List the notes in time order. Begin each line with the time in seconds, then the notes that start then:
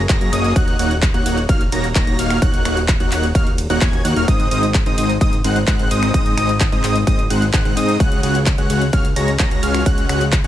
0.09 F#1 A#3 F#4 G#4 C#5 A#5 A#6, kick, clap, closed hi-hat, ride
0.21 F#2 A#3 F#4 G#4 C#5 A#5 A#6, closed hi-hat
0.32 F#1 A#3 F#4 G#4 C#5 D#5 D#6, open hi-hat, ride
0.44 closed hi-hat
0.56 D#1 A#3 D#4 F#4 C#5 F#5 F#6, kick, closed hi-hat, ride
0.68 closed hi-hat
0.79 D#1 A#3 D#4 F#4 C#5 F#5 F#6, open hi-hat, ride
0.91 closed hi-hat
1.02 kick, clap, closed hi-hat, ride
1.14 D#1 A#3 D#4 F#4 C#5 F#5 F#6, closed hi-hat
1.26 D#1 A#3 D#4 F#4 C#5 F#5 F#6, open hi-hat, ride
1.37 closed hi-hat
1.49 D#1 A#3 D#4 F#4 C#5 F5 F6, kick, closed hi-hat, ride
1.61 closed hi-hat
1.72 D#1 A#3 D#4 F#4 C#5 A#5 A#6, open hi-hat, ride
1.84 closed hi-hat
1.95 D#1 A#3 D#4 F#4 C#5 A#5 A#6, kick, clap, closed hi-hat, ride
2.07 D#1 A#3 D#4 F#4 C#5 A#5 A#6, closed hi-hat
2.19 D#1 A#3 D#4 F#4 C#5 F5 F6, open hi-hat, ride
2.30 finger snap, closed hi-hat
2.42 D#1 A#3 D#4 F#4 C#5 F#5 F#6, kick, closed hi-hat, ride
2.54 closed hi-hat
2.65 D#1 A#3 D#4 F#4 C#5 F#5 F#6, finger snap, open hi-hat, ride
2.77 closed hi-hat
2.88 kick, clap, closed hi-hat, ride
3.00 D#1 A#3 D#4 F#4 C#5 F#5 F#6, closed hi-hat
3.12 D#1 A#3 D#4 F#4 C#5 F#5 F#6, clap, open hi-hat, ride
3.24 closed hi-hat
3.35 D#1 A#3 D#4 F#4 C#5 F5 F6, kick, closed hi-hat, ride
3.47 closed hi-hat
3.58 open hi-hat, ride
3.70 D#1 A#3 D#4 F#4 C#5 F#5 F#6, closed hi-hat
3.81 D#1 A#3 D#4 G#5 G#6, kick, clap, closed hi-hat, ride
3.93 closed hi-hat
4.05 D#2 A#3 D#4 F#4 C#5 F#5 F#6, open hi-hat, ride
4.16 D#1 A#3 D#4 F#4 C#5 F5 F6, closed hi-hat
4.28 G#1 G#3 C4 D#4 C5 D#6, kick, closed hi-hat, ride
4.40 closed hi-hat
4.51 G#1 G#3 C4 D#4 C5 D#5 D#6, open hi-hat, ride
4.63 closed hi-hat
4.74 kick, clap, closed hi-hat, ride
4.86 G#1 G#3 C4 D#4 C5 D#5 D#6, closed hi-hat
4.98 G#1 G#3 C4 D#4 C5 D#5 D#6, open hi-hat, ride
5.09 closed hi-hat
5.21 G#1 G#3 C4 D#4 C5 D#5 D#6, kick, closed hi-hat, ride
5.33 closed hi-hat
5.44 G#1 G#3 C4 D#4 C5 F#5 F#6, open hi-hat, ride
5.56 closed hi-hat
5.67 G#1 G#3 C4 D#4 C5 F#5 F#6, kick, clap, closed hi-hat, ride
5.79 G#1 G#3 C4 D#4 C5 F#5 F#6, closed hi-hat
5.91 G#1 G#3 C4 D#4 C5 D#5 D#6, open hi-hat, ride
6.03 finger snap, closed hi-hat
6.14 G#1 G#3 C4 D#4 C5 D#5 D#6, kick, closed hi-hat, ride
6.26 closed hi-hat
6.37 G#1 G#3 C4 D#4 C5 D#5 D#6, finger snap, open hi-hat, ride
6.49 closed hi-hat
6.60 kick, clap, closed hi-hat, ride
6.72 G#1 G#3 C4 D#4 C5 D#5 D#6, closed hi-hat
6.84 G#1 G#3 C4 D#4 C5 D#5 D#6, clap, open hi-hat, ride
6.96 closed hi-hat
7.07 G#1 G#3 C4 D#4 C5 D#5 D#6, kick, closed hi-hat, ride
7.19 closed hi-hat
7.30 G#1 G#3 C4 D#4 C5 F#5 F#6, open hi-hat, ride
7.42 closed hi-hat
7.53 G#1 G#3 C4 D#4 C5 F#5 F#6, kick, clap, closed hi-hat, ride
7.65 G#1 G#3 C4 D#4 C5 F#5 F#6, closed hi-hat
7.77 G#2 G#3 C4 D#4 C5 D#5 D#6, open hi-hat, ride
7.89 closed hi-hat
8.00 C#2 G#3 C#4 F#4 C#5 F#5 F#6, kick, closed hi-hat, ride
8.12 closed hi-hat
8.23 C#2 G#3 C#4 F#4 C#5 F#5 F#6, open hi-hat, ride
8.35 closed hi-hat
8.46 kick, clap, closed hi-hat, ride
8.58 C#2 G#3 C#4 F#4 C#5 F#5 F#6, closed hi-hat
8.70 C#2 G#3 C#4 F#4 C#5 F#5 F#6, open hi-hat, ride
8.81 closed hi-hat
8.93 C#2 G#3 C#4 F#4 C#5 F5 F6, kick, closed hi-hat, ride
9.05 closed hi-hat
9.16 C#2 G#3 C#4 F#4 C#5 A#5 A#6, open hi-hat, ride
9.28 closed hi-hat
9.39 C#2 G#3 C#4 F#4 C#5 A#5 A#6, kick, clap, closed hi-hat, ride
9.51 C#2 G#3 C#4 F#4 C#5 A#5 A#6, closed hi-hat
9.63 C#2 G#3 C#4 F#4 C#5 F5 F6, open hi-hat, ride
9.75 finger snap, closed hi-hat
9.86 C#2 G#3 C#4 C#5 F#6, kick, closed hi-hat, ride
9.98 closed hi-hat
10.09 C#2 G#3 C#4 F#4 C#5 F#5 F#6, finger snap, open hi-hat, ride
10.21 closed hi-hat
10.32 kick, clap, closed hi-hat, ride
10.44 C#2 C#4 F#4 C#5 F#5